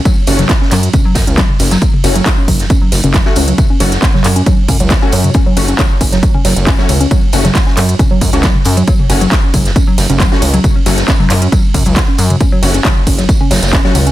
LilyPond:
<<
  \new Staff \with { instrumentName = "Synth stab" } { \time 4/4 \key fis \minor \tempo 4 = 136 r8 <a cis' fis'>16 r2. r16 | r8 <a cis' fis'>16 r2 r8 <a cis' fis'>16 r8 | r8 <a cis' fis'>16 r2 r8 <a cis' fis'>16 r8 | r8 <a cis' fis'>16 r2 r8 <a cis' fis'>16 r8 |
r8 <a cis' fis'>16 r2 <a cis' fis'>16 r4 | r8 <a cis' fis'>16 r2 r8 <a cis' fis'>16 r8 | r8 <a cis' fis'>16 r2. r16 | r8 <a cis' fis'>16 r2 r8 <a cis' fis'>16 r8 | }
  \new Staff \with { instrumentName = "Synth arpeggio sound" } { \clef bass \time 4/4 \key fis \minor fis16 r16 cis'16 fis16 r16 cis'16 fis16 r16 cis'16 fis16 r16 cis'16 fis16 r16 cis'16 fis16 | fis16 r16 cis'16 fis16 r16 cis'16 fis16 r16 cis'16 fis16 r16 cis'16 fis16 r16 cis'16 fis16 | r16 cis'16 fis16 r16 cis'16 fis16 r16 cis'16 fis16 r16 cis'16 fis16 r16 cis'16 fis16 r16 | cis'16 fis16 r16 cis'16 fis16 r16 cis'16 fis16 r16 cis'16 fis16 r16 cis'16 fis16 r16 cis'16 |
fis16 r16 cis'16 fis16 r16 cis'16 fis16 r16 cis'16 fis16 r16 cis'16 fis16 r16 cis'16 fis16 | fis16 r16 cis'16 fis16 r16 cis'16 fis16 r16 cis'16 fis16 r16 cis'16 fis16 r16 cis'16 fis16 | r16 cis'16 fis16 r16 cis'16 fis16 r16 cis'16 fis16 r16 cis'16 fis16 r16 cis'16 fis16 r16 | cis'16 fis16 r16 cis'16 fis16 r16 cis'16 fis16 r16 cis'16 fis16 r16 cis'16 fis16 r16 cis'16 | }
  \new Staff \with { instrumentName = "Analog synth bass" } { \clef bass \time 4/4 \key fis \minor r8 fis,,8 r8 fis,8 r8 fis,16 cis,8 r16 fis,,8 | r8 fis,,8 r8 fis,,8 r8 fis,,16 fis,,8 r16 cis,8 | r8 fis,,8 r8 fis,8 r8 fis,16 cis,8 r16 fis,8 | r8 fis,,8 r8 fis,,8 r8 fis,,16 fis,,8 r16 cis,8 |
r8 fis,,8 r8 fis,8 r8 fis,16 cis,8 r16 fis,8 | r8 fis,,8 r8 fis,,8 r8 fis,,16 fis,,8 r16 cis,8 | r8 fis,,8 r8 fis,8 r8 fis,16 cis,8 r16 fis,8 | r8 fis,,8 r8 fis,,8 r8 fis,,16 fis,,8 r16 cis,8 | }
  \new DrumStaff \with { instrumentName = "Drums" } \drummode { \time 4/4 <hh bd tamb>8 <hho cymr tamb>16 <hh sn toml>16 <hc hh bd sn tamb>16 sn16 <hc hho cymr tamb>16 hh16 <hh bd tamb toml>8 <hho bd cymr sn tamb>16 hh16 <hc hh bd sn tamb>16 toml16 <hho cymr sn tamb>16 <hh sn tamb>16 | <hh bd tamb>16 toml16 <hho cymr tamb>16 hh16 <hc hh bd sn tamb>8 <hho bd cymr tamb toml>16 <hh sn>16 <hh bd tamb>8 <hho cymr sn tamb>16 <hh toml>16 <hc hh bd sn tamb>16 sn16 <hho cymr tamb>16 hh16 | <hh bd tamb toml>8 <hho cymr tamb>16 <hh sn>16 <hc hh bd sn tamb>16 <sn toml>16 <hc hho cymr tamb>16 hh16 <hh bd tamb>8 <hho bd cymr tamb toml>16 hh16 <hc hh bd sn tamb>8 <hho cymr tamb>16 <hh toml>16 | <hh bd tamb>8 <hho cymr tamb>16 hh16 <hc hh bd sn tamb toml>8 <hho bd cymr tamb>16 <hh sn>16 <hh bd tamb>16 toml16 <hho cymr sn tamb>16 hh16 <hc hh bd sn tamb>16 sn16 <hho cymr tamb toml>16 hh16 |
<hh bd tamb>8 <hho cymr tamb>16 <hh sn toml>16 <hc hh bd sn tamb>16 sn16 <hc hho cymr tamb>16 hh16 <hh bd tamb toml>8 <hho bd cymr tamb>16 hh16 <hc hh bd sn tamb>16 toml16 <hho cymr tamb>16 hh16 | <hh bd tamb>16 toml16 <hho cymr tamb>16 hh16 <hc hh bd sn tamb>8 <hho bd cymr tamb toml>16 <hh sn>16 <hh bd tamb>8 <hho cymr sn tamb>16 <hh toml>16 <hc hh bd sn tamb>16 sn16 <hho cymr tamb>16 hh16 | <hh bd tamb toml>8 <hho cymr tamb>16 <hh sn>16 <hc hh bd sn tamb>16 <sn toml>16 <hc hho cymr tamb>16 hh16 <hh bd tamb>8 <hho bd cymr tamb toml>16 hh16 <hc hh bd sn tamb>8 <hho cymr tamb>16 <hh toml>16 | <hh bd tamb>8 <hho cymr tamb>16 hh16 <hc hh bd sn tamb toml>8 <hho bd cymr tamb>16 <hh sn>16 <hh bd tamb>16 toml16 <hho cymr sn tamb>32 <sn tamb>32 <hh sn tamb>32 <sn tamb>32 <hc hh bd sn>16 sn16 <hho cymr tamb toml>16 hh16 | }
>>